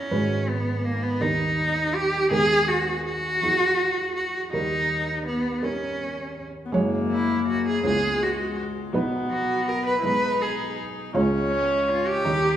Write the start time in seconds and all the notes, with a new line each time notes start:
Already playing: E2 E3 B3 C#4 E4 C#5
0.11 G#1 G#2 G#3 F#4 B4
0.49 B3
0.84 A#3
1.03 B3
1.20 D#2 D#3 G3 D#4 A#4
1.95 G4
2.31 D#2 D#3 G#3 B3 G#4 A#4
2.68 F#4
3.06 F#4
3.42 E2 F#3 E4 G#4
4.15 F#4
4.53 D#2 D#3 G3 D#4 A#4
5.26 B3
5.62 G3 C#4 D#4 A#4
6.65 B3
6.72 F#1 F#2 G#3 A#3 F#4 C#5
7.11 E4
7.48 F#4
7.68 G#4
7.82 C#2 C#3 G#3 B3 E4 G#4 C#5
8.22 F#4
8.92 B1 B2 F#3 B3 D#4 B4
9.30 F#4
9.68 A#4
9.86 B4
9.98 E4
10.03 B1 B2 G#3 D#4 B4
10.42 G#4
11.14 C#2 C#3 G#3 C#4 F4 C#5
11.51 C#4
11.89 F4
12.07 G4
12.24 D#2 D#3 G3 D#4 C#5